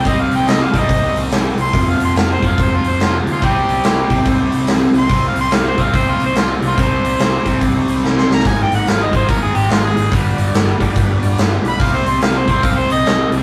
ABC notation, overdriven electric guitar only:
X:1
M:4/4
L:1/8
Q:"Swing" 1/4=143
K:Cm
V:1 name="Overdriven electric guitar" clef=bass
[C,G,C]3 [C,G,C]4- [C,G,C] | [F,,C,F,]3 [F,,C,F,]4- [F,,C,F,] | [C,G,C]3 [C,G,C]4- [C,G,C] | [C,G,C]3 [C,G,C]4- [C,G,C] |
[C,G,C]3 [C,G,C]4- [C,G,C] | [A,,E,A,]3 [A,,E,A,]4- [A,,E,A,] | [G,,D,G,]3 [G,,D,G,]4- [G,,D,G,] | [C,G,C]3 [C,G,C]4- [C,G,C] |]